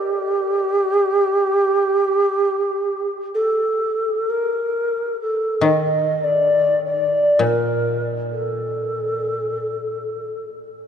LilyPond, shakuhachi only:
\new Staff \with { instrumentName = "Shakuhachi" } { \time 4/4 \tempo 4 = 67 g'2.~ g'8 a'8~ | a'8 bes'4 a'8 \tuplet 3/2 { ees''4 d''8~ d''8 d''4 } | bes'8 r8 a'2~ a'8 r8 | }